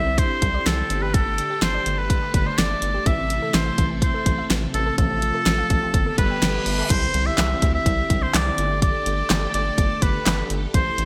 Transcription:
Already playing: analog synth bass C2, string machine D3 C4 E4 G4, oboe E5
0.06 synth pluck C4
0.18 oboe C5, kick, closed hi-hat
0.30 synth pluck E4
0.42 analog synth bass C2, synth pluck D3, kick, closed hi-hat
0.54 synth pluck D5
0.66 analog synth bass C2, synth pluck D3, oboe A4, snare, closed hi-hat
0.78 synth pluck C4
0.90 analog synth bass G1, synth pluck D3, string machine A3 A4, closed hi-hat
1.02 synth pluck G4, oboe B4
1.14 synth pluck D3, oboe A4, kick, closed hi-hat
1.26 synth pluck A3
1.38 synth pluck D3, closed hi-hat
1.50 synth pluck G4
1.62 analog synth bass G1, synth pluck D3, oboe C5, snare, closed hi-hat
1.74 synth pluck D5
1.86 analog synth bass G1, synth pluck D3, closed hi-hat
1.98 synth pluck A3, oboe B4
2.10 kick, closed hi-hat
2.22 synth pluck G4
2.34 analog synth bass G1, synth pluck D3, oboe B4, kick, closed hi-hat
2.46 oboe C5, synth pluck D5
2.58 analog synth bass G1, synth pluck D3, oboe D5, snare, closed hi-hat
2.70 synth pluck A3
2.82 analog synth bass G1, synth pluck D3, closed hi-hat
2.94 synth pluck G4
3.06 analog synth bass A1, string machine C3 E4, synth pluck E3, oboe E5, kick, closed hi-hat
3.18 synth pluck C4
3.30 synth pluck E3, closed hi-hat
3.42 synth pluck A4
3.54 analog synth bass A1, synth pluck E3, oboe C5, snare, closed hi-hat
3.66 synth pluck E5
3.78 analog synth bass A1, synth pluck E3, kick, closed hi-hat
3.90 synth pluck C4
4.02 oboe C5, kick, closed hi-hat
4.14 synth pluck A4
4.26 analog synth bass A1, synth pluck E3, kick, closed hi-hat
4.38 synth pluck E5
4.50 analog synth bass A1, synth pluck E3, snare, closed hi-hat
4.62 synth pluck C4
4.74 analog synth bass A1, synth pluck E3, oboe A4, closed hi-hat
4.86 synth pluck A4
4.98 analog synth bass A1, synth pluck F3, string machine F4 A4, oboe A4, kick, closed hi-hat
5.10 synth pluck C4
5.22 synth pluck F3, closed hi-hat
5.34 synth pluck A4
5.46 analog synth bass A1, synth pluck F3, snare, closed hi-hat
5.58 synth pluck F5
5.70 analog synth bass A1, synth pluck F3, kick, closed hi-hat
5.82 synth pluck C4
5.94 analog synth bass G1, string machine D3 B3 G4 A4, kick, closed hi-hat, reverse cymbal
6.06 synth pluck A4
6.18 analog synth bass G1, synth pluck G3, oboe B4, kick, closed hi-hat
6.30 synth pluck G5
6.42 analog synth bass G1, synth pluck G3, snare, closed hi-hat
6.54 synth pluck B3
6.66 analog synth bass G1, synth pluck G3, open hi-hat
6.78 synth pluck A4
6.90 analog synth bass C2, string machine D3 C4 E4 G4, oboe C5, kick, closed hi-hat, crash, impact
7.14 analog synth bass C2, closed hi-hat
7.26 oboe E5
7.38 analog synth bass C2, snare, clap, closed hi-hat
7.62 analog synth bass D2, kick, closed hi-hat
7.74 oboe E5
7.86 analog synth bass C2, kick, closed hi-hat
8.10 analog synth bass C2, kick, closed hi-hat
8.22 oboe C5
8.34 analog synth bass C2, oboe D5, snare, clap, closed hi-hat
8.58 analog synth bass G1, string machine A3 G4 A4, closed hi-hat
8.82 oboe D5, kick, closed hi-hat
9.06 analog synth bass G1, closed hi-hat
9.30 analog synth bass G1, snare, clap, closed hi-hat
9.54 analog synth bass G1, oboe D5, closed hi-hat
9.78 analog synth bass G1, kick, closed hi-hat
10.02 analog synth bass G1, oboe B4, kick, closed hi-hat
10.26 analog synth bass G1, snare, clap, closed hi-hat
10.50 analog synth bass G1, closed hi-hat
10.74 analog synth bass A1, string machine C3 E4 A4, oboe C5, kick, closed hi-hat
10.98 analog synth bass A1, closed hi-hat

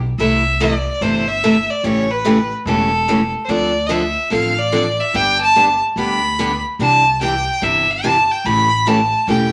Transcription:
Already playing: upright bass B1
0.18 upright bass C2, steel-string acoustic guitar C3 E3 A3 E4 A4, fiddle E5
0.60 steel-string acoustic guitar C3 E3 A3 E4 A4, fiddle D5
1.01 upright bass G1, steel-string acoustic guitar C3 E3 A3 E4 A4, fiddle C5
1.28 fiddle E5
1.44 steel-string acoustic guitar C3 E3 A3 E4 A4
1.70 fiddle D5
1.84 upright bass A1, steel-string acoustic guitar C#3 E3 A3 C#4 G4, fiddle C#5
2.11 fiddle B4
2.25 steel-string acoustic guitar C#3 E3 A3 C#4 G4
2.65 upright bass E1, steel-string acoustic guitar C#3 E3 A3 C#4 G4, fiddle A4
3.08 steel-string acoustic guitar C#3 E3 A3 C#4 G4
3.45 upright bass D2, steel-string acoustic guitar F3, fiddle C5
3.49 steel-string acoustic guitar D3 C4 D4 A4, fiddle D5
3.87 steel-string acoustic guitar D3 F3 C4 D4 A4, fiddle D#5
3.92 fiddle E5
4.30 upright bass A1, steel-string acoustic guitar D3 F3 C4 D4 A4, fiddle F5
4.59 fiddle D5
4.72 steel-string acoustic guitar D3 F3 C4 D4 A4
5.00 fiddle E5
5.14 upright bass G1, steel-string acoustic guitar D3 G3 B3 D4 G4, fiddle G5
5.41 fiddle A5
5.56 steel-string acoustic guitar D3 G3 B3 D4 G4
5.96 upright bass D2, steel-string acoustic guitar D3 G3 B3 D4 G4, fiddle B5
6.39 steel-string acoustic guitar D3 G3 B3 D4 G4
6.79 upright bass C2, steel-string acoustic guitar C3 E3 D4 G4, fiddle A5
7.21 steel-string acoustic guitar C3 E3 D4 G4, fiddle G5
7.62 upright bass G1, steel-string acoustic guitar C3 E3 D4 G4, fiddle E5
7.91 fiddle A5
8.04 steel-string acoustic guitar C3 E3 D4 G4
8.31 fiddle G5
8.45 upright bass A1, steel-string acoustic guitar C#3 E3 A3 C#4 G4, fiddle B5
8.86 steel-string acoustic guitar C#3 E3 A3 C#4 G4, fiddle A5
9.28 upright bass E1, steel-string acoustic guitar C#3 E3 A3 C#4 G4, fiddle G5

